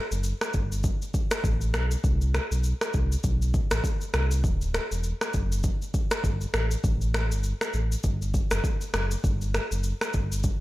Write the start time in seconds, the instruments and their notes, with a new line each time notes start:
0.11 sub bass F#1, shaker
0.23 shaker
0.41 finger snap, cross-stick, shaker
0.53 sub bass G1, kick, shaker
0.72 shaker
0.83 kick, shaker
1.02 shaker
1.14 kick, shaker
1.31 finger snap, cross-stick, shaker
1.44 sub bass A1, kick, shaker
1.61 shaker
1.74 sub bass B1, finger snap, cross-stick, shaker
1.91 shaker
2.04 sub bass C2, kick, shaker
2.21 shaker
2.34 finger snap, cross-stick, shaker
2.51 sub bass B1, shaker
2.63 shaker
2.81 finger snap, cross-stick, shaker
2.93 sub bass C2, kick, shaker
3.12 shaker
3.24 sub bass B1, kick, shaker
3.42 shaker
3.54 kick, shaker
3.71 sub bass A1, finger snap, cross-stick, shaker
3.84 kick, shaker
4.01 shaker
4.14 sub bass C2, finger snap, cross-stick, shaker
4.31 shaker
4.44 sub bass D1, kick, shaker
4.61 shaker
4.74 finger snap, cross-stick, shaker
4.91 sub bass E1, shaker
5.03 shaker
5.21 finger snap, cross-stick, shaker
5.33 sub bass F#1, kick, shaker
5.52 shaker
5.63 kick, shaker
5.82 shaker
5.94 kick, shaker
6.11 finger snap, cross-stick, shaker
6.24 sub bass G1, kick, shaker
6.41 shaker
6.54 sub bass A1, finger snap, cross-stick, shaker
6.71 shaker
6.84 sub bass A1, kick, shaker
7.01 shaker
7.14 finger snap, cross-stick, shaker
7.31 sub bass G1, shaker
7.43 shaker
7.61 finger snap, cross-stick, shaker
7.73 sub bass A1, shaker
7.92 shaker
8.03 sub bass G1, kick, shaker
8.22 shaker
8.34 kick, shaker
8.51 sub bass F#1, finger snap, cross-stick, shaker
8.64 kick, shaker
8.81 shaker
8.94 sub bass F#1, finger snap, cross-stick, shaker
9.11 shaker
9.24 sub bass G1, kick, shaker
9.41 shaker
9.54 finger snap, cross-stick, shaker
9.71 sub bass F#1, shaker
9.83 shaker
10.01 finger snap, cross-stick, shaker
10.13 sub bass G1, kick, shaker
10.32 shaker
10.43 kick, shaker